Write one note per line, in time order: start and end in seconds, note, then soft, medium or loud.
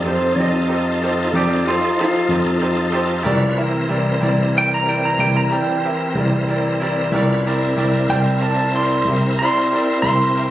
0.00 0.33 F2 medium
0.00 3.23 F3 medium
0.00 3.23 D#4 medium
0.00 3.23 A4 medium
0.05 0.28 D#4 medium
0.05 0.29 G4 soft
0.05 0.29 A4 soft
0.05 0.29 C5 medium
0.05 0.39 C5 medium
0.36 1.29 F2 medium
0.36 0.61 D#4 medium
0.36 0.62 G4 medium
0.36 0.62 A4 medium
0.36 1.32 D#5 loud
0.40 0.62 C5 medium
0.68 0.92 D#4 medium
0.68 0.93 G4 medium
0.68 0.93 A4 medium
0.68 0.93 C5 medium
1.02 1.25 D#4 medium
1.02 1.26 G4 medium
1.02 1.26 A4 medium
1.02 1.26 C5 medium
1.33 1.63 F2 medium
1.33 1.57 D#4 medium
1.33 1.58 G4 soft
1.33 1.66 G4 medium
1.33 1.58 A4 medium
1.33 1.58 D5 medium
1.67 1.90 D#4 medium
1.67 1.98 F4 medium
1.67 1.90 G4 medium
1.67 1.90 A4 medium
1.67 1.91 C5 medium
1.98 2.22 D#4 medium
1.98 3.24 F4 medium
1.98 2.23 G4 medium
1.98 2.23 A4 medium
1.98 2.23 C5 medium
2.29 3.22 F2 medium
2.29 2.54 D#4 medium
2.29 2.54 G4 soft
2.29 2.54 A4 medium
2.29 2.55 C5 medium
2.60 2.85 D#4 medium
2.60 2.86 G4 medium
2.60 2.86 A4 medium
2.60 2.86 C5 medium
2.92 3.17 D#4 medium
2.92 3.18 G4 medium
2.92 3.18 A4 medium
2.92 3.18 C5 medium
3.23 3.86 C2 loud
3.23 3.59 C#4 medium
3.23 3.49 E4 medium
3.23 3.49 G4 medium
3.23 3.49 A#4 medium
3.23 3.59 B4 medium
3.23 3.50 D5 loud
3.28 3.59 F3 medium
3.55 7.10 E3 medium
3.55 7.10 C4 medium
3.55 3.81 E4 medium
3.55 3.82 G4 medium
3.55 3.81 A#4 medium
3.55 7.10 A#4 medium
3.55 3.82 E5 medium
3.88 4.20 C2 medium
3.88 4.13 E4 medium
3.88 4.14 G4 medium
3.88 4.14 A#4 medium
3.88 4.14 D5 medium
4.21 5.15 C2 medium
4.21 4.46 E4 medium
4.21 4.46 G4 medium
4.21 4.47 A#4 medium
4.21 4.47 D5 medium
4.54 4.79 E4 medium
4.54 4.79 G4 medium
4.54 4.80 A#4 medium
4.54 4.80 D5 medium
4.54 4.72 G5 loud
4.74 4.88 A#5 medium
4.86 5.11 E4 medium
4.86 5.11 G4 medium
4.86 5.11 A#4 medium
4.86 5.11 D5 medium
4.86 5.04 G5 medium
5.05 5.20 A#5 medium
5.17 5.48 C2 loud
5.17 5.43 E4 medium
5.17 5.43 G4 soft
5.17 5.44 A#4 soft
5.17 5.43 D5 medium
5.17 5.35 G5 loud
5.37 5.52 A#5 medium
5.49 5.75 E4 medium
5.49 5.75 G4 medium
5.49 5.76 A#4 medium
5.49 5.76 D5 medium
5.49 6.77 G5 loud
5.84 6.08 E4 medium
5.84 6.09 G4 medium
5.84 6.09 A#4 medium
5.84 6.09 E5 medium
6.15 7.09 C2 loud
6.15 6.41 E4 medium
6.15 6.41 G4 soft
6.15 6.41 A#4 medium
6.15 6.41 D5 medium
6.48 6.73 E4 medium
6.48 6.73 G4 medium
6.48 6.73 A#4 medium
6.48 6.73 D5 medium
6.80 7.05 E4 medium
6.80 7.05 G4 medium
6.80 7.05 A#4 medium
6.80 7.05 D5 medium
7.11 7.73 C2 loud
7.11 7.46 C#4 medium
7.11 7.37 E4 medium
7.11 7.45 F4 medium
7.11 7.37 G4 medium
7.11 7.37 A#4 medium
7.11 7.46 B4 medium
7.11 7.38 D5 medium
7.46 10.51 C4 medium
7.46 7.70 E4 medium
7.46 10.51 E4 medium
7.46 7.70 G4 medium
7.46 7.70 A#4 medium
7.46 10.51 A#4 medium
7.46 7.70 D5 medium
7.76 8.07 C2 medium
7.76 8.01 E4 medium
7.76 8.01 G4 medium
7.76 8.02 A#4 medium
7.76 8.02 D5 medium
8.08 9.02 C2 medium
8.08 8.34 E4 medium
8.08 8.34 G4 medium
8.08 8.34 A#4 soft
8.08 8.35 D5 medium
8.08 8.41 G5 loud
8.40 8.65 E4 medium
8.40 8.65 G4 medium
8.40 8.66 A#4 medium
8.40 8.66 D5 medium
8.40 8.74 A5 medium
8.74 8.98 E4 medium
8.74 8.99 G4 soft
8.74 8.99 A#4 medium
8.74 8.99 D5 medium
8.74 9.38 C6 medium
9.05 9.36 C2 loud
9.05 9.31 E4 soft
9.05 9.31 G4 medium
9.05 9.32 A#4 soft
9.10 9.33 E5 medium
9.39 9.64 E4 medium
9.39 9.64 G4 medium
9.39 9.64 A#4 medium
9.39 10.01 C6 medium
9.43 9.65 D5 medium
9.72 9.96 E4 medium
9.72 9.96 G4 medium
9.72 9.97 A#4 medium
9.72 9.97 D5 medium
10.02 10.51 C2 loud
10.02 10.28 E4 medium
10.02 10.28 G4 soft
10.02 10.28 A#4 soft
10.02 10.29 E5 medium
10.02 10.51 C6 medium
10.35 10.51 E4 medium
10.35 10.51 G4 soft
10.35 10.51 A#4 medium
10.35 10.51 E5 medium